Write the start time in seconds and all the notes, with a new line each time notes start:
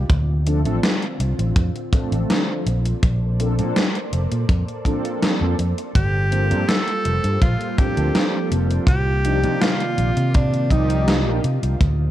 0.10 D2 D3 C4 F4, kick, closed hi-hat
0.46 F3 A3 C4 D4 A4, closed hi-hat
0.64 A1 F3 A3 C4 D4 A4, closed hi-hat
0.83 snare, closed hi-hat
1.02 closed hi-hat
1.20 C2, closed hi-hat
1.39 A1, closed hi-hat
1.56 F2, kick, closed hi-hat
1.76 closed hi-hat
1.92 F3 A3 C4 D4 A4, kick, closed hi-hat
2.12 A1, closed hi-hat
2.30 snare, closed hi-hat
2.66 A#1 A#3 A4 C5 D5, closed hi-hat
2.85 closed hi-hat
3.03 A#1, kick, closed hi-hat
3.39 F3 A#3 C4 D4 A4, closed hi-hat
3.57 A#2 F3 A#3 C4 D4 A4, closed hi-hat
3.76 snare, closed hi-hat
3.95 closed hi-hat
4.13 F1, closed hi-hat
4.32 A#2, closed hi-hat
4.49 F2, kick, closed hi-hat
4.68 closed hi-hat
4.85 F3 A#3 C4 D4 A4, kick, closed hi-hat
5.05 closed hi-hat
5.23 snare, closed hi-hat
5.40 F2 F3 A#3 C4 D4 A4
5.59 F2, closed hi-hat
5.78 closed hi-hat
5.95 G1 G3 A#3 F4 G4 C5, kick, closed hi-hat
6.31 F3 A#3 C4 D4 A4, closed hi-hat
6.50 G2 F3 A#3 C4 D4 A4, closed hi-hat
6.68 A4, snare, closed hi-hat
6.88 closed hi-hat
7.05 F1, closed hi-hat
7.24 G2, closed hi-hat
7.42 A#1 F4, kick, closed hi-hat
7.61 closed hi-hat
7.77 F3 A#3 C4 D4 G4 A4, kick, closed hi-hat
7.97 D2, closed hi-hat
8.15 snare, closed hi-hat
8.51 F1, closed hi-hat
8.71 closed hi-hat
8.87 C2 C3 D#3 A#3 G4 D5, kick, closed hi-hat
9.24 F3 A#3 D4 D#4 G4, closed hi-hat
9.43 C3 F3 A#3 D4 D#4 G4, closed hi-hat
9.61 F4, snare, closed hi-hat
9.80 closed hi-hat
9.98 A#1, closed hi-hat
10.17 C3, closed hi-hat
10.34 D4, kick, closed hi-hat
10.54 closed hi-hat
10.70 C2 F3 A#3 D#4 G4 D5, kick, closed hi-hat
10.90 closed hi-hat
11.08 snare, closed hi-hat
11.25 A#1 F3 A#3 D4 D#4 G4
11.44 C3, closed hi-hat
11.63 C2, closed hi-hat
11.80 D2 D3 C4, kick, closed hi-hat